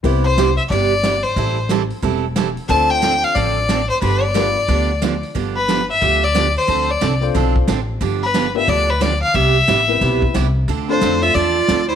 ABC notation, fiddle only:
X:1
M:4/4
L:1/8
Q:"Swing" 1/4=180
K:C
V:1 name="Fiddle"
z c2 e d3 c- | c2 z6 | a g2 f d3 c | B d6 z |
z B2 e2 d2 c- | c d2 z4 z | z B2 e d B d f | e6 z2 |
z c2 e d3 c |]